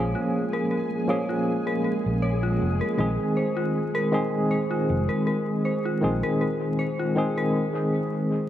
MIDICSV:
0, 0, Header, 1, 6, 480
1, 0, Start_track
1, 0, Tempo, 759494
1, 1889, Time_signature, 4, 2, 24, 8
1, 5368, End_track
2, 0, Start_track
2, 0, Title_t, "Synth bell"
2, 0, Program_c, 0, 98
2, 0, Control_c, 0, 64, 127
2, 0, Note_on_c, 0, 65, 71
2, 0, Note_on_c, 0, 70, 68
2, 0, Note_on_c, 0, 73, 82
2, 85, Note_off_c, 0, 73, 0
2, 95, Note_off_c, 0, 65, 0
2, 95, Note_on_c, 0, 65, 70
2, 323, Note_off_c, 0, 65, 0
2, 337, Note_off_c, 0, 70, 0
2, 337, Note_on_c, 0, 70, 90
2, 441, Note_off_c, 0, 70, 0
2, 448, Note_on_c, 0, 70, 76
2, 678, Note_off_c, 0, 70, 0
2, 690, Note_on_c, 0, 73, 71
2, 805, Note_off_c, 0, 73, 0
2, 816, Note_on_c, 0, 65, 69
2, 1044, Note_off_c, 0, 65, 0
2, 1055, Note_on_c, 0, 70, 94
2, 1157, Note_off_c, 0, 70, 0
2, 1165, Note_on_c, 0, 70, 73
2, 1396, Note_off_c, 0, 70, 0
2, 1405, Note_on_c, 0, 73, 80
2, 1522, Note_off_c, 0, 73, 0
2, 1536, Note_on_c, 0, 65, 76
2, 1764, Note_off_c, 0, 65, 0
2, 1775, Note_on_c, 0, 70, 92
2, 1878, Note_off_c, 0, 70, 0
2, 1886, Note_on_c, 0, 70, 80
2, 1896, Control_c, 0, 64, 0
2, 2018, Control_c, 0, 64, 127
2, 2117, Note_off_c, 0, 70, 0
2, 2129, Note_on_c, 0, 72, 73
2, 2244, Note_off_c, 0, 72, 0
2, 2254, Note_on_c, 0, 65, 69
2, 2483, Note_off_c, 0, 65, 0
2, 2495, Note_on_c, 0, 70, 104
2, 2602, Note_off_c, 0, 70, 0
2, 2609, Note_on_c, 0, 70, 72
2, 2838, Note_off_c, 0, 70, 0
2, 2849, Note_on_c, 0, 72, 81
2, 2964, Note_off_c, 0, 72, 0
2, 2974, Note_on_c, 0, 65, 74
2, 3203, Note_off_c, 0, 65, 0
2, 3216, Note_on_c, 0, 70, 96
2, 3323, Note_off_c, 0, 70, 0
2, 3330, Note_on_c, 0, 70, 79
2, 3558, Note_off_c, 0, 70, 0
2, 3571, Note_on_c, 0, 72, 72
2, 3686, Note_off_c, 0, 72, 0
2, 3700, Note_on_c, 0, 65, 71
2, 3926, Note_off_c, 0, 65, 0
2, 3940, Note_on_c, 0, 70, 92
2, 4045, Note_off_c, 0, 70, 0
2, 4051, Note_on_c, 0, 70, 78
2, 4279, Note_off_c, 0, 70, 0
2, 4290, Note_on_c, 0, 72, 85
2, 4405, Note_off_c, 0, 72, 0
2, 4421, Note_on_c, 0, 65, 77
2, 4646, Note_off_c, 0, 65, 0
2, 4662, Note_on_c, 0, 70, 96
2, 4766, Note_off_c, 0, 70, 0
2, 5368, End_track
3, 0, Start_track
3, 0, Title_t, "Ambient pad"
3, 0, Program_c, 1, 92
3, 0, Note_on_c, 1, 56, 76
3, 0, Note_on_c, 1, 68, 78
3, 5368, Note_off_c, 1, 56, 0
3, 5368, Note_off_c, 1, 68, 0
3, 5368, End_track
4, 0, Start_track
4, 0, Title_t, "Synth texture"
4, 0, Program_c, 2, 99
4, 0, Note_on_c, 2, 56, 77
4, 0, Note_on_c, 2, 68, 77
4, 4770, Note_off_c, 2, 56, 0
4, 4770, Note_off_c, 2, 68, 0
4, 5368, End_track
5, 0, Start_track
5, 0, Title_t, "Tine electric piano"
5, 0, Program_c, 3, 4
5, 0, Control_c, 3, 64, 127
5, 0, Note_on_c, 3, 53, 86
5, 0, Note_on_c, 3, 58, 77
5, 0, Note_on_c, 3, 61, 78
5, 0, Note_on_c, 3, 68, 100
5, 659, Note_off_c, 3, 53, 0
5, 662, Note_off_c, 3, 58, 0
5, 665, Note_off_c, 3, 61, 0
5, 667, Note_off_c, 3, 68, 0
5, 679, Note_on_c, 3, 53, 88
5, 685, Note_on_c, 3, 58, 81
5, 691, Note_on_c, 3, 61, 77
5, 696, Note_on_c, 3, 68, 104
5, 1857, Note_off_c, 3, 53, 0
5, 1860, Note_off_c, 3, 58, 0
5, 1863, Note_off_c, 3, 61, 0
5, 1866, Note_off_c, 3, 68, 0
5, 1882, Note_on_c, 3, 51, 88
5, 1888, Note_on_c, 3, 56, 80
5, 1893, Note_on_c, 3, 60, 79
5, 1898, Control_c, 3, 64, 0
5, 1898, Note_on_c, 3, 68, 98
5, 2026, Control_c, 3, 64, 127
5, 2579, Note_off_c, 3, 51, 0
5, 2582, Note_off_c, 3, 56, 0
5, 2584, Note_off_c, 3, 60, 0
5, 2587, Note_off_c, 3, 68, 0
5, 2601, Note_on_c, 3, 51, 93
5, 2607, Note_on_c, 3, 56, 89
5, 2611, Note_on_c, 3, 60, 82
5, 2618, Note_on_c, 3, 68, 105
5, 3778, Note_off_c, 3, 51, 0
5, 3781, Note_off_c, 3, 56, 0
5, 3783, Note_off_c, 3, 60, 0
5, 3787, Note_off_c, 3, 68, 0
5, 3801, Note_on_c, 3, 51, 90
5, 3808, Note_on_c, 3, 56, 86
5, 3812, Note_on_c, 3, 60, 77
5, 3818, Note_on_c, 3, 68, 96
5, 4498, Note_off_c, 3, 51, 0
5, 4502, Note_off_c, 3, 56, 0
5, 4504, Note_off_c, 3, 60, 0
5, 4507, Note_off_c, 3, 68, 0
5, 4522, Note_on_c, 3, 51, 95
5, 4528, Note_on_c, 3, 56, 82
5, 4533, Note_on_c, 3, 60, 84
5, 4540, Note_on_c, 3, 68, 102
5, 4766, Note_off_c, 3, 51, 0
5, 4768, Note_off_c, 3, 56, 0
5, 4771, Note_off_c, 3, 60, 0
5, 4774, Note_off_c, 3, 68, 0
5, 5368, End_track
6, 0, Start_track
6, 0, Title_t, "Fingered electric bass"
6, 0, Program_c, 4, 33
6, 0, Note_on_c, 4, 34, 95
6, 84, Note_off_c, 4, 34, 0
6, 1303, Note_on_c, 4, 34, 84
6, 1630, Note_off_c, 4, 34, 0
6, 1653, Note_on_c, 4, 29, 94
6, 1764, Note_off_c, 4, 29, 0
6, 1891, Note_on_c, 4, 34, 93
6, 2003, Note_off_c, 4, 34, 0
6, 3095, Note_on_c, 4, 29, 91
6, 3205, Note_off_c, 4, 29, 0
6, 3817, Note_on_c, 4, 34, 96
6, 3926, Note_off_c, 4, 34, 0
6, 5368, End_track
0, 0, End_of_file